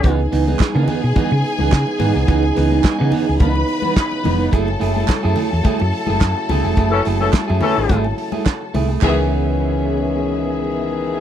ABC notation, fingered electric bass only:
X:1
M:4/4
L:1/16
Q:1/4=107
K:C#m
V:1 name="Fingered electric bass" clef=bass
C,,2 C,,2 z C, z B,, z C, z C,, C, z G,, ^B,,, | C,,2 C,,2 z C, z C,, C,,2 z4 ^E,,,2 | F,,,2 F,,,2 z F,, z E,, z F,, z F,,, F,, z C,, ^E,,, | F,,,2 F,,,2 z F,, z G,,, G,,,2 z4 ^B,,,2 |
C,,16 |]